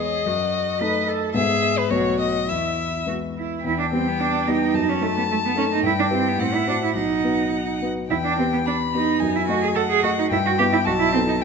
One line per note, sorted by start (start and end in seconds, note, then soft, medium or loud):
0.00 0.29 E2 soft
0.00 0.22 G#3 soft
0.00 0.23 B3 soft
0.00 0.28 G#4 soft
0.00 0.23 B4 soft
0.00 1.06 D#5 medium
0.26 0.79 F#2 soft
0.26 0.83 F#4 soft
0.81 1.31 A3 soft
0.81 1.32 D#4 soft
0.81 1.32 A4 soft
0.81 1.10 B4 medium
1.08 1.35 A4 soft
1.34 1.89 G#2 soft
1.34 1.87 G#3 soft
1.34 1.87 B3 soft
1.34 1.90 G#4 soft
1.34 1.87 B4 soft
1.34 1.79 E5 medium
1.78 1.92 B4 soft
1.90 2.47 B1 soft
1.90 2.45 A3 soft
1.90 2.45 B3 soft
1.90 2.48 F#4 soft
1.90 2.45 B4 soft
1.90 2.19 C#5 medium
2.19 2.50 D#5 medium
2.48 3.05 E2 soft
2.48 3.01 E4 soft
2.48 3.07 E5 soft
3.06 3.60 G#3 soft
3.06 3.60 B3 soft
3.06 3.16 F#4 soft
3.06 3.60 B4 soft
3.37 3.65 E4 soft
3.64 3.91 E2 soft
3.64 3.78 E4 medium
3.64 4.76 G5 soft
3.79 3.84 D4 soft
3.92 4.43 G3 soft
3.92 4.43 B3 soft
3.92 4.09 C4 soft
3.92 4.44 B4 soft
4.08 4.22 B3 medium
4.20 4.50 D4 medium
4.47 4.72 G3 soft
4.47 4.72 B3 soft
4.47 4.91 D#4 medium
4.47 4.72 B4 soft
4.74 5.01 F#2 soft
4.74 5.84 A5 soft
4.89 5.04 C#4 medium
5.01 5.52 A3 soft
5.01 5.16 A3 medium
5.01 5.53 D#4 soft
5.01 5.53 A4 soft
5.17 5.22 B3 medium
5.31 5.36 A3 medium
5.46 5.57 B3 medium
5.56 5.81 A3 soft
5.56 5.63 C#4 medium
5.56 5.81 D#4 soft
5.56 5.81 A4 soft
5.73 5.85 D#4 medium
5.83 6.10 G2 soft
5.83 5.91 E4 medium
5.83 6.40 G5 soft
5.99 6.04 D4 medium
6.10 6.30 C4 medium
6.10 6.36 E4 soft
6.10 6.36 G4 soft
6.10 6.36 B4 soft
6.28 6.42 B3 medium
6.39 6.66 A2 soft
6.39 6.57 C4 medium
6.39 6.95 F#5 soft
6.55 6.68 E4 medium
6.67 6.74 D4 medium
6.67 6.93 E4 soft
6.67 6.93 F#4 soft
6.67 6.93 C5 soft
6.84 6.97 E4 soft
6.95 7.23 B1 soft
6.95 7.81 D#4 medium
6.95 7.88 F#5 soft
7.24 7.77 B3 soft
7.24 7.78 F#4 soft
7.24 7.78 B4 soft
7.82 8.07 B3 soft
7.82 8.07 F#4 soft
7.82 8.08 B4 soft
8.09 8.37 E2 soft
8.09 8.16 E4 medium
8.09 8.67 G5 soft
8.25 8.37 D4 soft
8.38 8.90 B3 soft
8.38 8.43 C4 soft
8.38 8.90 G4 soft
8.38 8.90 B4 soft
8.53 8.59 B3 soft
8.66 8.75 D4 medium
8.66 9.21 B5 soft
8.94 9.19 B3 soft
8.94 9.37 D#4 soft
8.94 9.19 G4 soft
8.94 9.19 B4 soft
9.19 9.48 F#2 soft
9.19 9.78 G#5 soft
9.36 9.48 E4 medium
9.49 10.00 A3 soft
9.49 9.62 F#4 medium
9.49 10.00 F#4 soft
9.49 10.00 D#5 soft
9.63 9.68 G#4 medium
9.75 9.81 A4 medium
9.75 10.30 F#5 soft
9.90 10.03 G#4 medium
10.04 10.28 A3 soft
10.04 10.09 F#4 medium
10.04 10.29 F#4 soft
10.04 10.29 D#5 soft
10.19 10.24 D#4 medium
10.31 10.57 G2 medium
10.31 10.37 E4 medium
10.31 10.86 G5 soft
10.46 10.51 F#4 medium
10.59 10.83 B3 soft
10.59 10.84 E4 soft
10.59 10.64 G4 medium
10.59 10.84 B4 soft
10.73 10.78 E4 medium
10.84 11.13 B1 medium
10.84 10.92 F#4 medium
10.84 11.43 A5 medium
11.00 11.13 E4 medium
11.13 11.39 B3 soft
11.13 11.19 C4 medium
11.13 11.40 D#4 soft
11.13 11.40 A4 soft
11.28 11.34 D#4 medium